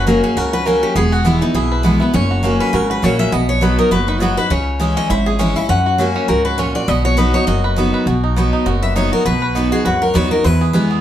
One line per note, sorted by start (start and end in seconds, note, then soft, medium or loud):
0.00 0.21 F#1 medium
0.00 0.34 F#2 medium
0.00 0.20 C#4 medium
0.07 0.35 F#3 medium
0.07 0.35 A#3 medium
0.07 0.36 C#4 medium
0.07 0.36 F#4 medium
0.07 0.23 A#4 medium
0.24 0.64 C#4 medium
0.24 0.37 G#4 medium
0.36 0.80 C#2 medium
0.36 0.93 C#3 medium
0.36 0.52 F#4 medium
0.36 0.53 A#4 medium
0.53 0.65 F#4 medium
0.53 0.66 B4 loud
0.66 0.94 F#3 medium
0.66 0.95 A#3 medium
0.66 0.95 C#4 loud
0.66 0.96 F#4 medium
0.66 0.95 F#4 medium
0.66 0.82 A#4 medium
0.83 0.95 C#4 medium
0.83 0.95 G4 medium
0.95 1.39 E1 medium
0.95 1.52 E2 medium
0.95 1.24 B3 medium
0.95 1.12 G#4 loud
1.12 1.26 F#4 medium
1.12 1.52 G#4 medium
1.25 1.41 E3 medium
1.25 1.41 G#3 medium
1.25 1.68 B3 medium
1.25 1.41 B3 medium
1.25 1.41 E4 medium
1.25 1.40 E4 loud
1.41 1.55 B3 soft
1.41 1.55 D#4 medium
1.41 1.54 E4 medium
1.41 1.82 E4 medium
1.54 1.98 B1 medium
1.54 2.11 B2 medium
1.54 1.82 E4 medium
1.54 1.98 G#4 medium
1.72 2.00 B4 medium
1.83 2.00 E3 medium
1.83 2.00 G#3 medium
1.83 2.14 B3 medium
1.83 2.00 B3 medium
1.83 1.99 E4 medium
2.00 2.14 B3 medium
2.00 2.13 E4 medium
2.00 2.14 B4 medium
2.14 2.57 F#1 loud
2.14 2.70 F#2 loud
2.14 2.57 C#4 medium
2.14 2.57 C#5 medium
2.31 2.43 F#4 medium
2.43 2.71 F#3 medium
2.43 2.72 A#3 medium
2.43 2.72 C#4 medium
2.43 2.73 F#4 medium
2.60 3.00 C#4 medium
2.60 2.74 B4 medium
2.73 2.98 G#1 medium
2.73 3.30 C#3 medium
2.73 2.89 F#4 medium
2.73 2.90 A#4 medium
2.90 3.02 F#4 medium
2.90 3.04 B4 medium
3.02 3.28 A#1 medium
3.02 3.31 F#3 medium
3.02 3.31 A#3 medium
3.02 3.32 C#4 medium
3.02 3.33 F#4 medium
3.02 3.32 F#4 medium
3.02 3.19 C#5 medium
3.19 3.32 C#4 medium
3.19 3.33 E5 loud
3.32 3.76 B1 medium
3.32 3.89 B2 medium
3.32 3.61 B3 medium
3.32 3.48 D#5 medium
3.49 3.62 C#5 medium
3.61 3.90 F#3 medium
3.61 3.90 B3 medium
3.61 4.05 B3 medium
3.61 3.91 D#4 medium
3.61 3.91 F#4 medium
3.61 3.78 B4 medium
3.79 4.19 D#4 medium
3.79 3.91 A#4 medium
3.91 4.35 F#1 medium
3.91 4.48 F#2 medium
3.91 4.34 F#4 medium
3.91 4.08 B4 loud
4.08 4.21 D#4 medium
4.08 4.37 B4 medium
4.20 4.37 F#3 medium
4.20 4.37 B3 medium
4.20 4.51 B3 medium
4.20 4.37 D#4 medium
4.20 4.37 F#4 medium
4.20 4.36 F#4 loud
4.37 4.51 D#4 medium
4.37 4.50 F#4 medium
4.37 4.50 B4 medium
4.37 4.51 B4 medium
4.50 4.94 C#2 loud
4.50 5.07 C#3 medium
4.50 4.94 C#4 medium
4.50 4.94 C#5 medium
4.79 5.08 E3 medium
4.79 5.09 G#3 medium
4.79 5.09 C#4 medium
4.79 5.09 E4 medium
4.79 5.23 G#4 medium
4.97 5.37 C#4 medium
4.97 5.10 D#5 loud
5.10 5.53 G#1 medium
5.10 5.67 G#2 medium
5.10 5.53 E4 medium
5.10 5.26 E5 loud
5.26 5.39 G#4 medium
5.26 5.67 G#4 medium
5.39 5.55 E3 medium
5.39 5.56 G#3 medium
5.39 5.68 C#4 medium
5.39 5.56 C#4 medium
5.39 5.54 E4 loud
5.39 5.56 C#5 medium
5.56 5.70 C#4 medium
5.56 5.68 E4 medium
5.56 5.69 E4 medium
5.56 5.69 E5 loud
5.69 6.26 F#2 medium
5.69 6.12 F#2 medium
5.69 6.12 C#4 medium
5.69 5.97 F#5 medium
5.86 5.99 F#4 medium
5.98 6.27 F#3 medium
5.98 6.27 A#3 loud
5.98 6.28 C#4 loud
5.98 6.29 F#4 medium
5.98 6.28 F#4 loud
6.16 6.56 C#4 medium
6.28 6.72 C#2 medium
6.28 6.57 G#2 medium
6.28 6.46 F#4 medium
6.28 6.44 A#4 medium
6.45 6.75 F#4 medium
6.45 6.58 B4 medium
6.58 6.86 A#2 medium
6.58 6.88 C#4 medium
6.58 6.74 C#5 medium
6.75 7.05 F#4 medium
6.75 6.88 D5 loud
6.88 7.31 B1 loud
6.88 7.45 B2 medium
6.88 7.17 B3 medium
6.88 7.04 D#5 loud
7.05 7.45 F#4 medium
7.05 7.17 C#5 medium
7.17 7.33 F#3 medium
7.17 7.33 B3 loud
7.17 7.61 B3 medium
7.17 7.34 D#4 medium
7.17 7.33 F#4 loud
7.17 7.33 B4 medium
7.34 7.75 D#4 medium
7.34 7.48 D#4 medium
7.34 7.47 F#4 medium
7.34 7.47 C#5 medium
7.47 7.91 F#1 medium
7.47 8.04 F#2 medium
7.47 7.90 F#4 medium
7.47 7.90 D#5 medium
7.64 7.93 B4 medium
7.76 8.05 F#3 medium
7.76 8.06 B3 medium
7.76 8.07 B3 medium
7.76 8.06 D#4 medium
7.76 8.06 F#4 medium
7.94 8.07 B4 medium
8.06 8.50 B1 medium
8.06 8.64 B2 medium
8.06 8.50 F#4 medium
8.24 8.52 D#4 medium
8.36 8.65 F#3 medium
8.36 9.55 B3 medium
8.36 8.65 B3 medium
8.36 8.66 D#4 medium
8.36 8.66 F#4 medium
8.53 8.93 D#4 medium
8.66 9.10 F#1 medium
8.66 9.23 F#2 medium
8.66 9.09 F#4 medium
8.82 9.42 B4 medium
8.82 8.95 E5 medium
8.96 9.24 F#3 medium
8.96 9.25 B3 medium
8.96 9.39 D#4 medium
8.96 9.25 D#4 medium
8.96 9.25 F#4 medium
8.96 9.12 C#5 medium
9.12 9.24 F#4 medium
9.12 9.25 A#4 medium
9.25 9.69 B1 medium
9.25 9.83 B2 medium
9.25 9.68 F#4 medium
9.25 9.69 B4 loud
9.42 9.82 B4 medium
9.55 9.71 F#3 medium
9.55 9.98 B3 medium
9.55 9.71 B3 medium
9.55 9.72 D#4 medium
9.55 9.71 F#4 loud
9.72 9.86 D#4 soft
9.72 9.84 F#4 medium
9.72 10.01 F#4 medium
9.72 9.85 G#4 medium
9.85 10.10 C#2 medium
9.85 10.42 F#2 medium
9.85 10.01 F#4 medium
9.85 10.14 B4 medium
10.02 10.30 F#4 medium
10.02 10.15 A#4 medium
10.14 10.40 D#2 medium
10.14 10.30 F#3 medium
10.14 10.31 B3 loud
10.14 10.31 D#4 medium
10.14 10.29 F#4 loud
10.14 10.45 B4 medium
10.14 10.31 C#5 loud
10.31 10.45 D#4 medium
10.31 10.44 F#4 medium
10.31 10.45 F#4 medium
10.31 10.44 A#4 medium
10.44 11.01 E2 loud
10.44 10.88 E2 medium
10.44 10.88 E4 medium
10.44 11.01 B4 medium
10.61 10.89 G#4 medium
10.73 11.01 E3 medium
10.73 11.01 G#3 medium
10.73 11.01 B3 medium
10.73 11.01 E4 medium
10.73 11.01 B4 medium
10.91 11.01 G#4 medium